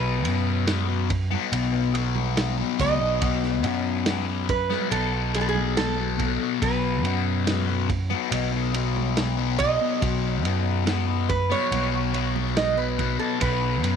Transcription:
Already playing: picked electric bass B1, distorted electric guitar B2 F#3 B3, resonator guitar played with a steel bar B4
0.24 picked electric bass F#2, distorted electric guitar B2 F#3 B3, ride
0.66 distorted electric guitar B2 F#3 B3, snare, ride
0.88 distorted electric guitar F#3 B3
1.10 muted distorted electric guitar stroke, kick, ride
1.31 distorted electric guitar F#3 B3, high conga
1.51 picked electric bass B1, distorted electric guitar B2 F#3 B3, ride, high conga
1.73 distorted electric guitar F#3 B3
1.94 distorted electric guitar B2 F#3 B3, ride, high conga
2.16 high conga, low conga
2.37 snare, ride
2.58 distorted electric guitar F#3 B3, high conga
2.79 picked electric bass C#2, distorted electric guitar B2 F#3 B3, resonator guitar played with a steel bar D#5, kick, ride, low conga
3.00 picked electric bass B1, distorted electric guitar F#3 B3
3.20 picked electric bass B1, distorted electric guitar B2 F#3 B3, kick, ride
3.43 snare
3.63 picked electric bass F#2, distorted electric guitar B2 F#3 B3, ride
4.06 distorted electric guitar B2 F#3 B3, snare, ride
4.26 distorted electric guitar F#3 B3
4.49 resonator guitar played with a steel bar B4, muted distorted electric guitar stroke, kick, ride, low conga
4.70 distorted electric guitar F#3 B3, snare, high conga
4.91 picked electric bass B1, distorted electric guitar B2 F#3 B3, resonator guitar played with a steel bar A4, ride, high conga
5.13 distorted electric guitar F#3 B3
5.33 distorted electric guitar B2 F#3 B3, resonator guitar played with a steel bar G#4, ride
5.41 resonator guitar played with a steel bar A4
5.49 resonator guitar played with a steel bar G#4
5.55 high conga, low conga
5.77 resonator guitar played with a steel bar A4, snare, ride
5.97 distorted electric guitar F#3 B3
6.17 distorted electric guitar B2 F#3 B3, kick, ride, low conga
6.39 distorted electric guitar F#3 B3
6.60 picked electric bass B1, distorted electric guitar B2 F#3 B3, resonator guitar played with a steel bar B4, kick, ride
7.03 picked electric bass F#2, distorted electric guitar B2 F#3 B3, ride
7.45 distorted electric guitar B2 F#3 B3, snare, ride
7.67 distorted electric guitar F#3 B3
7.89 muted distorted electric guitar stroke, kick, ride, low conga
8.10 distorted electric guitar F#3 B3, high conga
8.31 picked electric bass B1, distorted electric guitar B2 F#3 B3, ride, high conga
8.52 distorted electric guitar F#3 B3
8.73 distorted electric guitar B2 F#3 B3, ride
8.97 high conga, low conga
9.17 snare, ride
9.37 distorted electric guitar F#3 B3
9.59 distorted electric guitar B2 F#3 B3, resonator guitar played with a steel bar D#5, kick, ride, low conga
9.81 distorted electric guitar F#3 B3
10.01 picked electric bass B1, distorted electric guitar B2 F#3 B3, kick, ride
10.43 picked electric bass F#2, distorted electric guitar B2 F#3 B3, ride
10.85 distorted electric guitar B2 F#3 B3, snare, ride
11.07 distorted electric guitar F#3 B3
11.29 resonator guitar played with a steel bar B4, muted distorted electric guitar stroke, kick, ride, low conga
11.50 distorted electric guitar F#3 B3, resonator guitar played with a steel bar C#5, high conga
11.70 picked electric bass B1, distorted electric guitar B2 F#3 B3, ride, high conga
11.91 distorted electric guitar F#3 B3
12.12 distorted electric guitar B2 F#3 B3, ride
12.36 high conga, low conga
12.57 resonator guitar played with a steel bar D#5, snare, ride
12.76 distorted electric guitar F#3 B3, resonator guitar played with a steel bar B4
12.98 distorted electric guitar B2 F#3 B3, kick, ride, low conga
13.19 distorted electric guitar F#3 B3, resonator guitar played with a steel bar A4
13.40 picked electric bass B1, distorted electric guitar B2 F#3 B3, resonator guitar played with a steel bar B4, kick, ride
13.82 picked electric bass F#2, distorted electric guitar B2 F#3 B3, ride

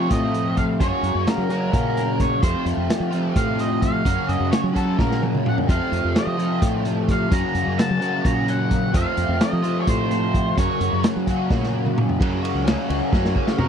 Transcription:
Already playing: overdriven electric guitar F2 C3 F3 A3 C4 F4
0.10 fingered electric bass A2, lead electric guitar D#5, kick, closed hi-hat
0.34 closed hi-hat
0.57 lead electric guitar F5, kick, closed hi-hat
0.80 overdriven electric guitar F#2 C#3 F#3 A#3 C#4 F#4, fingered electric bass F#2, lead electric guitar C#5, kick, closed hi-hat
1.03 fingered electric bass F#2, closed hi-hat
1.15 fingered electric bass F#2
1.27 lead electric guitar A#4, snare, closed hi-hat
1.38 fingered electric bass F#3
1.49 overdriven electric guitar F#2 C#3 F#3 A#3 C#4 F#4, closed hi-hat
1.72 fingered electric bass A#2, lead electric guitar A#4, kick, closed hi-hat
1.97 snare, closed hi-hat
2.20 lead electric guitar C#5, kick, snare, closed hi-hat
2.42 overdriven electric guitar F2 C3 F3 A3 C4 F4, fingered electric bass F2, lead electric guitar C5, kick, closed hi-hat
2.65 fingered electric bass F2, closed hi-hat
2.77 fingered electric bass F2
2.90 snare, closed hi-hat
3.00 fingered electric bass F3
3.11 overdriven electric guitar F2 C3 F3 A3 C4 F4, closed hi-hat
3.36 fingered electric bass A2, lead electric guitar F5, kick, closed hi-hat
3.59 lead electric guitar D#5, snare, closed hi-hat
3.81 lead electric guitar F5, kick, closed hi-hat
4.04 overdriven electric guitar F#2 C#3 F#3 A#3 C#4 F#4, fingered electric bass F#2, kick, closed hi-hat
4.28 fingered electric bass F#2, lead electric guitar D#5, closed hi-hat
4.40 fingered electric bass F#2
4.52 lead electric guitar C#5, snare, closed hi-hat
4.64 fingered electric bass F#3
4.72 overdriven electric guitar F#2 C#3 F#3 A#3 C#4 F#4, lead electric guitar A4, kick, closed hi-hat
4.99 fingered electric bass A#2, lead electric guitar A#4, kick, snare
5.12 snare
5.23 high tom
5.35 mid tom
5.46 lead electric guitar F#5, mid tom
5.58 floor tom
5.67 overdriven electric guitar F2 C3 F3 A3 C4 F4, fingered electric bass F2, lead electric guitar F5, kick, closed hi-hat
5.92 fingered electric bass F2, closed hi-hat
6.04 fingered electric bass F2
6.16 lead electric guitar D#5, snare, closed hi-hat
6.27 fingered electric bass F3
6.37 overdriven electric guitar F2 C3 F3 A3 C4 F4, closed hi-hat
6.62 fingered electric bass A2, kick, closed hi-hat
6.85 snare, closed hi-hat
7.08 lead electric guitar F5, kick, snare, closed hi-hat
7.30 overdriven electric guitar F#2 C#3 F#3 A#3 C#4 F#4, fingered electric bass F#2, lead electric guitar A#5, kick, closed hi-hat
7.55 fingered electric bass F#2, closed hi-hat
7.67 fingered electric bass F#2
7.79 lead electric guitar A5, snare, closed hi-hat
7.90 fingered electric bass F#3
8.00 overdriven electric guitar F#2 C#3 F#3 A#3 C#4 F#4, closed hi-hat
8.25 fingered electric bass A#2, lead electric guitar A#5, kick, closed hi-hat
8.48 lead electric guitar F#5, closed hi-hat
8.71 kick, closed hi-hat
8.93 overdriven electric guitar F2 C3 F3 A3 C4 F4, fingered electric bass F2, lead electric guitar F5, kick, closed hi-hat
9.17 fingered electric bass F2, closed hi-hat
9.29 fingered electric bass F2
9.40 lead electric guitar D#5, snare, closed hi-hat
9.53 fingered electric bass F3
9.63 overdriven electric guitar F2 C3 F3 A3 C4 F4, closed hi-hat
9.81 lead electric guitar C#5
9.87 fingered electric bass A2, lead electric guitar C5, kick, closed hi-hat
10.11 lead electric guitar C5, snare, closed hi-hat
10.34 kick, closed hi-hat
10.56 overdriven electric guitar F#2 C#3 F#3 A#3 C#4 F#4, fingered electric bass F#2, lead electric guitar C#5, kick, closed hi-hat
10.80 fingered electric bass F#2, closed hi-hat
10.93 fingered electric bass F#2
11.04 snare, closed hi-hat
11.16 fingered electric bass F#3
11.27 overdriven electric guitar F#2 C#3 F#3 A#3 C#4 F#4, kick, closed hi-hat
11.50 fingered electric bass A#2, kick, snare
11.63 snare
11.86 mid tom
11.98 mid tom
12.09 floor tom
12.20 overdriven electric guitar F#2 C#3 F#3 A#3 C#4 F#4, fingered electric bass F#2, kick, ride
12.42 overdriven electric guitar F#3 A#3 C#4 F#4, ride
12.54 fingered electric bass C#2
12.65 overdriven electric guitar F#2 C#3 F#3 A#3 C#4 F#4, snare, ride
12.88 fingered electric bass C#2, overdriven electric guitar F#3 A#3 C#4 F#4, ride
13.12 fingered electric bass F#2, overdriven electric guitar F#3 A#3 C#4 F#4, kick, snare
13.25 snare
13.35 overdriven electric guitar F#2 C#3 F#3 A#3 C#4 F#4, kick
13.47 snare
13.59 fingered electric bass C3, overdriven electric guitar F#3 A#3 C#4 F#4, lead electric guitar A#4, floor tom

